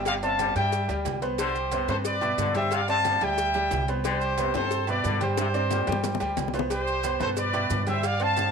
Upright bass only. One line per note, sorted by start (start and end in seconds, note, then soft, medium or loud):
0.00 0.50 G1 loud
0.55 0.86 G2 medium
0.89 1.04 D2 medium
1.05 1.83 C2 medium
1.88 2.34 G2 medium
2.38 3.15 G2 medium
3.21 3.68 D2 medium
3.71 4.49 C2 loud
4.54 5.01 G2 loud
5.04 5.82 G2 loud
5.88 6.18 G2 medium
6.20 6.36 D2 medium
6.37 7.15 C2 medium
7.20 7.67 G2 medium
7.70 8.48 G2 loud